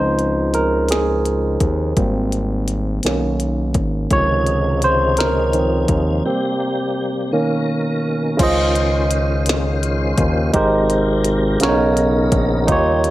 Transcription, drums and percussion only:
0.19 closed hi-hat
0.54 closed hi-hat
0.89 snare, closed hi-hat
1.26 closed hi-hat
1.60 kick, closed hi-hat
1.97 kick, closed hi-hat
2.32 closed hi-hat
2.68 closed hi-hat
3.03 snare, closed hi-hat
3.40 closed hi-hat
3.74 kick, closed hi-hat
4.11 kick, closed hi-hat
4.47 closed hi-hat
4.82 closed hi-hat
5.17 snare, closed hi-hat
5.53 closed hi-hat
5.88 kick, closed hi-hat
8.39 kick, closed hi-hat, crash
8.75 closed hi-hat
9.11 closed hi-hat
9.46 snare, closed hi-hat
9.83 closed hi-hat
10.18 kick, closed hi-hat
10.54 kick, closed hi-hat
10.90 closed hi-hat
11.25 closed hi-hat
11.60 snare, closed hi-hat
11.97 closed hi-hat
12.32 kick, closed hi-hat
12.68 kick, closed hi-hat
13.04 closed hi-hat

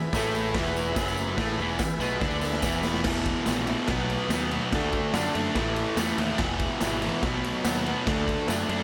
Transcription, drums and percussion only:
0.13 kick, snare, open hi-hat, tambourine
0.35 tambourine
0.46 tambourine
0.55 kick, snare, open hi-hat
0.66 tambourine
0.76 tambourine
0.87 tambourine
0.96 kick, snare, open hi-hat, tambourine
1.08 tambourine
1.17 tambourine
1.38 kick, snare, open hi-hat, tambourine
1.59 tambourine
1.69 tambourine
1.79 kick, snare, open hi-hat, tambourine
1.90 tambourine
2.01 tambourine
2.11 tambourine
2.21 kick, snare, tambourine
2.31 tambourine
2.41 snare, tambourine
2.52 snare, tambourine
2.62 kick, snare, tambourine
2.72 tambourine
2.83 snare, tambourine
2.94 snare
3.04 kick, snare, crash
3.26 kick, ride
3.46 snare, ride, tambourine
3.67 ride
3.88 kick, snare, ride
4.10 ride
4.30 snare, ride, tambourine
4.51 ride
4.73 kick, snare, ride
4.92 kick, ride
5.14 snare, ride, tambourine
5.35 ride
5.55 kick, snare, ride
5.76 ride
5.97 snare, ride, tambourine
6.18 ride
6.38 kick, snare, ride
6.59 kick, ride
6.81 snare, ride, tambourine
7.02 ride
7.23 kick, snare, ride
7.44 ride
7.65 snare, ride, tambourine
7.86 ride
8.07 kick, snare, ride
8.28 kick, ride
8.48 snare, ride, tambourine
8.69 ride

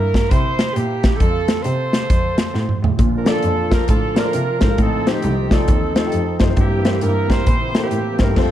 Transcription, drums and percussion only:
0.14 kick, snare, closed hi-hat
0.31 kick, closed hi-hat
0.59 snare, closed hi-hat
0.76 closed hi-hat
1.03 kick, snare, closed hi-hat
1.20 kick, closed hi-hat
1.48 snare, closed hi-hat
1.64 closed hi-hat
1.93 snare, closed hi-hat
2.10 kick, closed hi-hat
2.38 snare, closed hi-hat
2.55 snare
2.69 mid tom
2.84 floor tom
2.99 kick, closed hi-hat
3.26 snare, closed hi-hat
3.43 closed hi-hat
3.72 kick, snare, closed hi-hat
3.88 kick, closed hi-hat
4.16 snare, closed hi-hat
4.33 closed hi-hat
4.61 kick, snare, closed hi-hat
4.78 kick, closed hi-hat
5.07 snare, closed hi-hat
5.22 closed hi-hat
5.51 kick, snare, closed hi-hat
5.68 kick, closed hi-hat
5.96 snare, closed hi-hat
6.12 closed hi-hat
6.39 kick, snare, closed hi-hat
6.56 kick, closed hi-hat
6.85 snare, closed hi-hat
7.01 closed hi-hat
7.30 kick, snare, closed hi-hat
7.46 kick, closed hi-hat
7.75 snare, closed hi-hat
7.91 closed hi-hat
8.19 kick, snare, closed hi-hat
8.36 kick, snare, crash

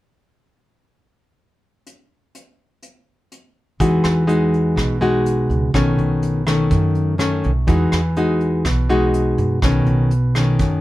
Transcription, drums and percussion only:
1.87 closed hi-hat
2.35 closed hi-hat
2.83 closed hi-hat
3.32 closed hi-hat
3.80 kick, closed hi-hat
4.04 cross-stick, closed hi-hat
4.29 closed hi-hat
4.54 closed hi-hat
4.77 kick, cross-stick, closed hi-hat
5.02 closed hi-hat
5.26 closed hi-hat
5.51 closed hi-hat
5.74 kick, cross-stick, closed hi-hat
5.99 closed hi-hat
6.23 closed hi-hat
6.47 cross-stick, closed hi-hat
6.71 kick, closed hi-hat
6.95 closed hi-hat
7.20 cross-stick, closed hi-hat
7.44 closed hi-hat
7.68 kick, closed hi-hat
7.92 cross-stick, closed hi-hat
8.16 closed hi-hat
8.40 closed hi-hat
8.65 kick, cross-stick, closed hi-hat
8.90 closed hi-hat
9.14 closed hi-hat
9.38 closed hi-hat
9.62 kick, cross-stick, closed hi-hat
9.86 closed hi-hat
10.11 closed hi-hat
10.35 cross-stick, closed hi-hat
10.59 kick, closed hi-hat

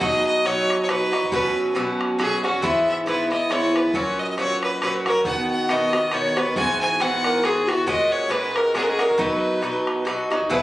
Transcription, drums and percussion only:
0.01 bodhran
0.46 bodhran
0.70 bodhran
0.89 bodhran
1.13 bodhran
1.23 bodhran
1.32 bodhran
1.76 bodhran
2.01 bodhran
2.20 bodhran
2.45 bodhran
2.54 bodhran
2.63 bodhran
3.07 bodhran
3.32 bodhran
3.51 bodhran
3.76 bodhran
3.85 bodhran
3.94 bodhran
4.38 bodhran
4.63 bodhran
4.82 bodhran
5.06 bodhran
5.16 bodhran
5.25 bodhran
5.69 bodhran
5.93 bodhran
6.12 bodhran
6.37 bodhran
6.47 bodhran
6.56 bodhran
7.00 bodhran
7.24 bodhran
7.44 bodhran
7.69 bodhran
7.78 bodhran
7.88 bodhran
8.31 bodhran
8.56 bodhran
8.75 bodhran
8.99 bodhran
9.10 bodhran
9.19 bodhran
9.63 bodhran
9.87 bodhran
10.07 bodhran
10.32 bodhran
10.42 bodhran
10.51 bodhran

